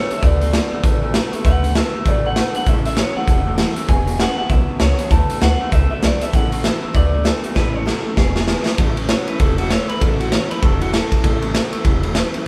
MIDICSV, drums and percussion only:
0, 0, Header, 1, 2, 480
1, 0, Start_track
1, 0, Key_signature, 3, "major"
1, 0, Tempo, 306122
1, 348, Time_signature, 4, 2, 24, 8
1, 19559, End_track
2, 0, Start_track
2, 0, Title_t, "Drums"
2, 170, Note_on_c, 9, 42, 68
2, 326, Note_off_c, 9, 42, 0
2, 355, Note_on_c, 9, 36, 115
2, 355, Note_on_c, 9, 42, 70
2, 511, Note_off_c, 9, 42, 0
2, 512, Note_off_c, 9, 36, 0
2, 649, Note_on_c, 9, 42, 71
2, 806, Note_off_c, 9, 42, 0
2, 839, Note_on_c, 9, 38, 120
2, 839, Note_on_c, 9, 42, 69
2, 996, Note_off_c, 9, 38, 0
2, 996, Note_off_c, 9, 42, 0
2, 1311, Note_on_c, 9, 36, 121
2, 1311, Note_on_c, 9, 42, 69
2, 1468, Note_off_c, 9, 36, 0
2, 1468, Note_off_c, 9, 42, 0
2, 1787, Note_on_c, 9, 38, 107
2, 1787, Note_on_c, 9, 42, 60
2, 1944, Note_off_c, 9, 38, 0
2, 1944, Note_off_c, 9, 42, 0
2, 2084, Note_on_c, 9, 42, 65
2, 2241, Note_off_c, 9, 42, 0
2, 2269, Note_on_c, 9, 36, 112
2, 2271, Note_on_c, 9, 42, 61
2, 2426, Note_off_c, 9, 36, 0
2, 2428, Note_off_c, 9, 42, 0
2, 2572, Note_on_c, 9, 42, 61
2, 2729, Note_off_c, 9, 42, 0
2, 2752, Note_on_c, 9, 38, 114
2, 2752, Note_on_c, 9, 42, 62
2, 2908, Note_off_c, 9, 38, 0
2, 2908, Note_off_c, 9, 42, 0
2, 3223, Note_on_c, 9, 42, 57
2, 3224, Note_on_c, 9, 36, 114
2, 3379, Note_off_c, 9, 42, 0
2, 3381, Note_off_c, 9, 36, 0
2, 3702, Note_on_c, 9, 38, 97
2, 3702, Note_on_c, 9, 42, 63
2, 3859, Note_off_c, 9, 38, 0
2, 3859, Note_off_c, 9, 42, 0
2, 3993, Note_on_c, 9, 42, 65
2, 4150, Note_off_c, 9, 42, 0
2, 4176, Note_on_c, 9, 42, 63
2, 4180, Note_on_c, 9, 36, 101
2, 4332, Note_off_c, 9, 42, 0
2, 4337, Note_off_c, 9, 36, 0
2, 4475, Note_on_c, 9, 42, 71
2, 4632, Note_off_c, 9, 42, 0
2, 4653, Note_on_c, 9, 38, 117
2, 4653, Note_on_c, 9, 42, 66
2, 4810, Note_off_c, 9, 38, 0
2, 4810, Note_off_c, 9, 42, 0
2, 5136, Note_on_c, 9, 36, 116
2, 5137, Note_on_c, 9, 42, 65
2, 5293, Note_off_c, 9, 36, 0
2, 5294, Note_off_c, 9, 42, 0
2, 5611, Note_on_c, 9, 38, 101
2, 5611, Note_on_c, 9, 42, 62
2, 5768, Note_off_c, 9, 38, 0
2, 5768, Note_off_c, 9, 42, 0
2, 5899, Note_on_c, 9, 42, 68
2, 6056, Note_off_c, 9, 42, 0
2, 6090, Note_on_c, 9, 42, 60
2, 6094, Note_on_c, 9, 36, 109
2, 6247, Note_off_c, 9, 42, 0
2, 6251, Note_off_c, 9, 36, 0
2, 6388, Note_on_c, 9, 42, 65
2, 6545, Note_off_c, 9, 42, 0
2, 6579, Note_on_c, 9, 38, 107
2, 6579, Note_on_c, 9, 42, 63
2, 6736, Note_off_c, 9, 38, 0
2, 6736, Note_off_c, 9, 42, 0
2, 7049, Note_on_c, 9, 42, 57
2, 7051, Note_on_c, 9, 36, 112
2, 7205, Note_off_c, 9, 42, 0
2, 7208, Note_off_c, 9, 36, 0
2, 7522, Note_on_c, 9, 38, 108
2, 7522, Note_on_c, 9, 42, 59
2, 7679, Note_off_c, 9, 38, 0
2, 7679, Note_off_c, 9, 42, 0
2, 7818, Note_on_c, 9, 42, 67
2, 7975, Note_off_c, 9, 42, 0
2, 8009, Note_on_c, 9, 36, 108
2, 8009, Note_on_c, 9, 42, 62
2, 8166, Note_off_c, 9, 36, 0
2, 8166, Note_off_c, 9, 42, 0
2, 8306, Note_on_c, 9, 42, 64
2, 8463, Note_off_c, 9, 42, 0
2, 8492, Note_on_c, 9, 38, 117
2, 8492, Note_on_c, 9, 42, 63
2, 8649, Note_off_c, 9, 38, 0
2, 8649, Note_off_c, 9, 42, 0
2, 8968, Note_on_c, 9, 42, 63
2, 8972, Note_on_c, 9, 36, 106
2, 9125, Note_off_c, 9, 42, 0
2, 9129, Note_off_c, 9, 36, 0
2, 9449, Note_on_c, 9, 38, 113
2, 9449, Note_on_c, 9, 42, 66
2, 9606, Note_off_c, 9, 38, 0
2, 9606, Note_off_c, 9, 42, 0
2, 9743, Note_on_c, 9, 42, 68
2, 9900, Note_off_c, 9, 42, 0
2, 9932, Note_on_c, 9, 36, 106
2, 9932, Note_on_c, 9, 42, 67
2, 10089, Note_off_c, 9, 36, 0
2, 10089, Note_off_c, 9, 42, 0
2, 10227, Note_on_c, 9, 42, 72
2, 10384, Note_off_c, 9, 42, 0
2, 10413, Note_on_c, 9, 38, 115
2, 10413, Note_on_c, 9, 42, 67
2, 10570, Note_off_c, 9, 38, 0
2, 10570, Note_off_c, 9, 42, 0
2, 10887, Note_on_c, 9, 42, 58
2, 10892, Note_on_c, 9, 36, 111
2, 11044, Note_off_c, 9, 42, 0
2, 11048, Note_off_c, 9, 36, 0
2, 11369, Note_on_c, 9, 38, 107
2, 11369, Note_on_c, 9, 42, 58
2, 11526, Note_off_c, 9, 38, 0
2, 11526, Note_off_c, 9, 42, 0
2, 11663, Note_on_c, 9, 42, 61
2, 11820, Note_off_c, 9, 42, 0
2, 11854, Note_on_c, 9, 38, 66
2, 11855, Note_on_c, 9, 36, 99
2, 12011, Note_off_c, 9, 38, 0
2, 12012, Note_off_c, 9, 36, 0
2, 12344, Note_on_c, 9, 38, 75
2, 12501, Note_off_c, 9, 38, 0
2, 12814, Note_on_c, 9, 36, 103
2, 12815, Note_on_c, 9, 38, 84
2, 12971, Note_off_c, 9, 36, 0
2, 12972, Note_off_c, 9, 38, 0
2, 13106, Note_on_c, 9, 38, 84
2, 13262, Note_off_c, 9, 38, 0
2, 13291, Note_on_c, 9, 38, 98
2, 13448, Note_off_c, 9, 38, 0
2, 13578, Note_on_c, 9, 38, 96
2, 13735, Note_off_c, 9, 38, 0
2, 13768, Note_on_c, 9, 51, 88
2, 13773, Note_on_c, 9, 36, 119
2, 13925, Note_off_c, 9, 51, 0
2, 13930, Note_off_c, 9, 36, 0
2, 14066, Note_on_c, 9, 51, 67
2, 14223, Note_off_c, 9, 51, 0
2, 14250, Note_on_c, 9, 38, 121
2, 14250, Note_on_c, 9, 51, 84
2, 14407, Note_off_c, 9, 38, 0
2, 14407, Note_off_c, 9, 51, 0
2, 14544, Note_on_c, 9, 51, 59
2, 14701, Note_off_c, 9, 51, 0
2, 14733, Note_on_c, 9, 51, 84
2, 14737, Note_on_c, 9, 36, 117
2, 14890, Note_off_c, 9, 51, 0
2, 14894, Note_off_c, 9, 36, 0
2, 15024, Note_on_c, 9, 51, 61
2, 15180, Note_off_c, 9, 51, 0
2, 15217, Note_on_c, 9, 38, 105
2, 15217, Note_on_c, 9, 51, 83
2, 15374, Note_off_c, 9, 38, 0
2, 15374, Note_off_c, 9, 51, 0
2, 15513, Note_on_c, 9, 51, 60
2, 15670, Note_off_c, 9, 51, 0
2, 15704, Note_on_c, 9, 36, 111
2, 15705, Note_on_c, 9, 51, 79
2, 15861, Note_off_c, 9, 36, 0
2, 15862, Note_off_c, 9, 51, 0
2, 16001, Note_on_c, 9, 51, 60
2, 16157, Note_off_c, 9, 51, 0
2, 16183, Note_on_c, 9, 38, 120
2, 16183, Note_on_c, 9, 51, 84
2, 16339, Note_off_c, 9, 38, 0
2, 16339, Note_off_c, 9, 51, 0
2, 16479, Note_on_c, 9, 51, 69
2, 16636, Note_off_c, 9, 51, 0
2, 16660, Note_on_c, 9, 51, 86
2, 16662, Note_on_c, 9, 36, 123
2, 16817, Note_off_c, 9, 51, 0
2, 16819, Note_off_c, 9, 36, 0
2, 16957, Note_on_c, 9, 51, 66
2, 17113, Note_off_c, 9, 51, 0
2, 17149, Note_on_c, 9, 38, 106
2, 17149, Note_on_c, 9, 51, 82
2, 17306, Note_off_c, 9, 38, 0
2, 17306, Note_off_c, 9, 51, 0
2, 17434, Note_on_c, 9, 36, 88
2, 17435, Note_on_c, 9, 51, 72
2, 17590, Note_off_c, 9, 36, 0
2, 17592, Note_off_c, 9, 51, 0
2, 17624, Note_on_c, 9, 36, 113
2, 17624, Note_on_c, 9, 51, 83
2, 17781, Note_off_c, 9, 36, 0
2, 17781, Note_off_c, 9, 51, 0
2, 17911, Note_on_c, 9, 51, 64
2, 18068, Note_off_c, 9, 51, 0
2, 18104, Note_on_c, 9, 38, 117
2, 18104, Note_on_c, 9, 51, 93
2, 18261, Note_off_c, 9, 38, 0
2, 18261, Note_off_c, 9, 51, 0
2, 18388, Note_on_c, 9, 51, 68
2, 18545, Note_off_c, 9, 51, 0
2, 18575, Note_on_c, 9, 51, 82
2, 18578, Note_on_c, 9, 36, 115
2, 18731, Note_off_c, 9, 51, 0
2, 18734, Note_off_c, 9, 36, 0
2, 18868, Note_on_c, 9, 51, 65
2, 19025, Note_off_c, 9, 51, 0
2, 19050, Note_on_c, 9, 38, 115
2, 19050, Note_on_c, 9, 51, 76
2, 19207, Note_off_c, 9, 38, 0
2, 19207, Note_off_c, 9, 51, 0
2, 19349, Note_on_c, 9, 51, 62
2, 19505, Note_off_c, 9, 51, 0
2, 19559, End_track
0, 0, End_of_file